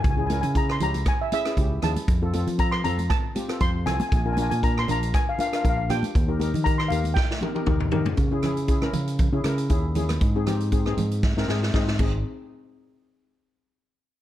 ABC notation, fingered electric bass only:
X:1
M:4/4
L:1/16
Q:"Swing 16ths" 1/4=118
K:Ab
V:1 name="Fingered electric bass" clef=bass
D,,3 D,3 D,,2 z4 D,,2 E,, z | F,,3 F,3 F,,2 z4 F,,2 C,, z | B,,,3 B,,3 B,,,2 z4 B,,,2 B,, z | E,,3 E,3 E,,2 z4 E,,2 E, z |
D,6 D,3 D, D,2 E,,4 | A,,6 A,,3 A,, A,,2 A,,2 A,,,2 | z16 |]